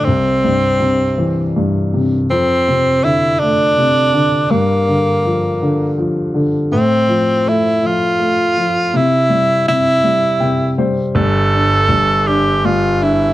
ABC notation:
X:1
M:6/8
L:1/8
Q:3/8=54
K:F
V:1 name="Tenor saxophone"
C4 z2 | C2 E D3 | B,4 z2 | C2 E F3 |
E2 E3 z | A3 G F E |]
V:2 name="Upright piano" clef=bass
C,, G,, C, E, G,, C, | F,, C, D, A, C, D, | G,, D, F, D, F, D, | A,, F, A, F, A, F, |
C, G, C, G, [C,g] [G,c] | G, D G, D G, D |]
V:3 name="Grand piano" clef=bass
z6 | z6 | z6 | z6 |
z6 | G,,,2 G,,,4 |]